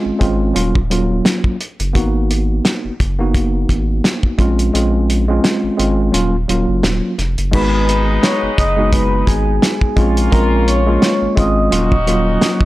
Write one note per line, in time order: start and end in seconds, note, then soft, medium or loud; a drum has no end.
0.00 0.17 G#3 loud
0.00 0.17 C4 medium
0.00 0.18 C#4 medium
0.00 0.18 F4 loud
0.06 0.12 G#1 soft
0.19 0.53 G#1 loud
0.19 0.55 G#3 medium
0.19 0.55 C4 medium
0.19 0.54 C#4 medium
0.19 0.54 F4 loud
0.19 kick loud
0.19 closed hi-hat medium
0.54 1.21 D#1 loud
0.54 0.76 F#3 medium
0.54 0.77 A#3 medium
0.54 0.77 C#4 medium
0.54 0.77 F4 loud
0.54 closed hi-hat medium
0.75 kick medium
0.90 1.55 F#3 loud
0.90 1.55 A#3 medium
0.90 1.56 C#4 medium
0.90 1.56 F4 loud
0.90 closed hi-hat medium
1.25 snare loud
1.25 snare medium
1.25 closed hi-hat loud
1.44 kick medium
1.61 closed hi-hat medium
1.80 1.94 F#1 medium
1.80 closed hi-hat medium
1.93 2.61 G#1 loud
1.93 2.91 A#3 medium
1.93 2.92 B3 medium
1.93 2.92 D#4 medium
1.93 2.92 F#4 loud
1.93 kick loud
1.93 closed hi-hat medium
2.31 closed hi-hat medium
2.65 snare loud
2.65 snare medium
2.65 closed hi-hat loud
2.85 2.91 F#1 soft
3.00 3.66 F#1 loud
3.00 kick loud
3.00 closed hi-hat medium
3.19 4.39 A#3 loud
3.19 4.39 B3 medium
3.19 4.40 D#4 medium
3.19 4.40 F#4 loud
3.35 kick loud
3.35 closed hi-hat loud
3.69 4.01 G#1 loud
3.69 kick medium
3.69 closed hi-hat medium
4.04 snare loud
4.04 snare medium
4.04 closed hi-hat loud
4.23 kick medium
4.38 4.71 A#1 loud
4.38 4.71 G#3 medium
4.38 4.71 C4 medium
4.38 4.72 C#4 medium
4.38 4.72 F4 loud
4.38 kick loud
4.38 closed hi-hat medium
4.59 closed hi-hat medium
4.74 5.40 A#1 loud
4.74 5.23 G#3 medium
4.74 5.24 C4 medium
4.74 5.24 C#4 medium
4.74 5.25 F4 loud
4.74 closed hi-hat medium
5.10 closed hi-hat medium
5.28 5.75 G#3 loud
5.28 5.75 C4 medium
5.28 5.76 C#4 medium
5.28 5.76 F4 loud
5.44 snare loud
5.44 snare medium
5.44 closed hi-hat loud
5.64 5.70 G#1 soft
5.77 6.11 G#1 medium
5.77 6.13 G#3 medium
5.77 6.13 C4 medium
5.77 6.12 C#4 medium
5.77 6.12 F4 loud
5.77 closed hi-hat medium
6.12 6.46 D#1 loud
6.12 6.34 F#3 medium
6.12 6.35 A#3 medium
6.12 6.35 C#4 medium
6.12 6.35 F4 loud
6.12 closed hi-hat medium
6.48 6.66 D#1 medium
6.48 7.13 F#3 medium
6.48 7.13 A#3 medium
6.48 7.14 C#4 medium
6.48 7.14 F4 loud
6.48 closed hi-hat medium
6.68 6.82 F#1 medium
6.83 7.01 D#1 medium
6.83 snare loud
6.83 snare medium
6.83 closed hi-hat loud
7.18 7.36 F1 loud
7.18 snare soft
7.18 closed hi-hat medium
7.38 7.52 F#1 medium
7.38 closed hi-hat medium
7.51 8.19 G#1 loud
7.51 8.49 G#3 loud
7.51 9.59 G#3 medium
7.51 8.50 B3 medium
7.51 9.59 B3 medium
7.51 8.50 D#4 medium
7.51 9.59 D#4 loud
7.51 8.51 F#4 loud
7.51 8.19 B4 loud
7.51 8.20 B5 medium
7.51 kick loud
7.51 crash loud
7.89 closed hi-hat medium
8.23 8.54 C#5 medium
8.23 8.55 C#6 medium
8.23 snare loud
8.23 snare medium
8.23 closed hi-hat loud
8.43 8.49 F#1 medium
8.57 9.24 F#1 medium
8.57 8.89 D#5 medium
8.57 8.89 D#6 medium
8.57 kick loud
8.57 closed hi-hat medium
8.77 9.95 G#3 medium
8.77 9.98 B3 medium
8.77 9.98 D#4 medium
8.77 9.98 F#4 loud
8.93 9.24 B4 medium
8.93 9.25 B5 medium
8.93 kick loud
8.93 closed hi-hat loud
9.27 9.60 G#1 loud
9.27 10.28 G#4 medium
9.27 10.28 G#5 medium
9.27 kick medium
9.27 closed hi-hat medium
9.62 snare loud
9.62 snare medium
9.62 closed hi-hat loud
9.81 kick loud
9.96 10.29 A#1 loud
9.96 10.29 G#3 medium
9.96 11.34 A#3 medium
9.96 10.29 C4 medium
9.96 11.34 C#4 medium
9.96 10.30 C#4 medium
9.96 11.34 F4 medium
9.96 10.30 F4 loud
9.96 kick loud
9.96 closed hi-hat medium
10.17 closed hi-hat medium
10.31 10.98 A#1 loud
10.31 10.82 G#3 medium
10.31 10.82 C4 medium
10.31 10.82 C#4 medium
10.31 10.83 F4 loud
10.31 10.63 A#4 loud
10.31 10.63 A#5 medium
10.31 kick loud
10.31 closed hi-hat medium
10.67 11.33 C#5 medium
10.67 11.33 C#6 medium
10.67 closed hi-hat medium
10.87 11.33 G#3 loud
10.87 11.34 A#3 medium
10.87 11.34 C#4 medium
10.87 11.34 F4 loud
11.02 snare loud
11.02 snare medium
11.02 closed hi-hat loud
11.22 11.28 G#1 soft
11.35 11.69 G#1 loud
11.35 11.71 G#3 loud
11.35 11.71 C4 loud
11.35 11.70 C#4 medium
11.35 11.71 F4 loud
11.35 12.65 D#5 medium
11.35 12.65 D#6 medium
11.35 kick loud
11.35 closed hi-hat medium
11.70 12.38 D#1 loud
11.70 11.93 F#3 loud
11.70 11.93 A#3 medium
11.70 12.65 C#4 medium
11.70 11.93 C#4 medium
11.70 12.65 D#4 medium
11.70 11.94 F4 loud
11.70 12.65 F#4 loud
11.70 closed hi-hat loud
11.92 kick medium
12.06 12.65 F#3 loud
12.06 12.65 A#3 medium
12.06 12.65 C#4 medium
12.06 12.65 F4 loud
12.06 closed hi-hat medium
12.41 snare loud
12.41 snare medium
12.41 closed hi-hat loud
12.61 kick medium